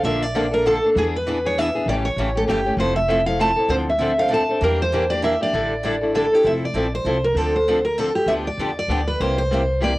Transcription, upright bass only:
0.03 A#1
0.95 E2
1.86 A1
2.16 A1
2.48 G1
2.77 F1
3.68 D2
4.61 E2
5.53 A1
6.44 F1
6.73 A#1
7.04 C2
7.35 D2
8.26 D2
8.58 E2
8.88 D2
9.20 C2

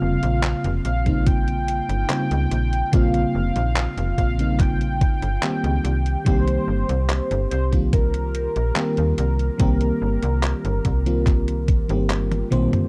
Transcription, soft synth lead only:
Already playing: F5
0.85 F5
1.26 G5
2.93 F5
4.18 F5
4.60 G5
6.26 C5
7.51 C5
7.93 A#4
9.18 A#4

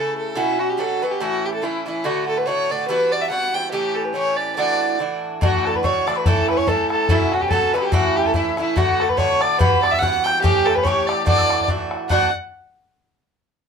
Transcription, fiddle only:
Already playing: A4
0.18 A4
0.37 E4
0.59 F#4
0.70 G4
0.80 A4
1.02 B4
1.11 G4
1.22 F#4
1.46 G4
1.54 A4
1.63 E4
1.87 E4
2.05 F#4
2.28 A4
2.38 B4
2.46 C#5
2.71 D5
2.88 B4
3.12 D5
3.22 E5
3.30 F#5
3.54 G5
3.72 G4
3.95 A4
4.04 B4
4.15 C#5
4.36 D5
4.56 D5
5.44 F#4
5.67 A4
5.75 B4
5.85 C#5
6.07 D5
6.17 B4
6.27 A4
6.50 B4
6.57 C#5
6.68 A4
6.91 A4
7.11 E4
7.33 F#4
7.41 G4
7.49 A4
7.73 B4
7.82 G4
7.92 F#4
8.16 G4
8.26 A4
8.35 E4
8.60 E4
8.77 F#4
9.01 A4
9.09 B4
9.17 C#5
9.41 D5
9.58 B4
9.82 D5
9.91 E5
9.99 F#5
10.24 G5
10.42 G4
10.65 A4
10.75 B4
10.83 C#5
11.07 D5
11.26 D5
12.09 F#5

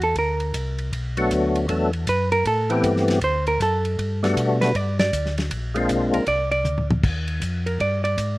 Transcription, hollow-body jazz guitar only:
0.03 A4
0.19 A#4
2.09 B4
2.32 A#4
2.47 A4
3.24 C5
3.48 A#4
3.62 A4
4.61 B4
4.76 D5
5.00 D5
6.14 A#4
6.28 D5
6.51 D5
7.66 A#4
7.81 D5
8.04 D5

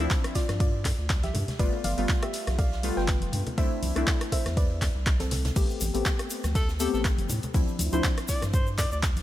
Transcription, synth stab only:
0.00 F3 C4 D4 E4
1.59 G3 A3 B3 F4
1.97 G3 A3 B3 F4
2.83 G3 A3 B3 F4
3.57 A3 C4 D4 E4
3.96 A3 C4 D4 E4
5.56 A3 B3 C4 G4
5.94 A3 B3 C4 G4
6.79 A3 B3 C4 G4
7.54 F3 C4 D4 E4
7.92 F3 C4 D4 E4

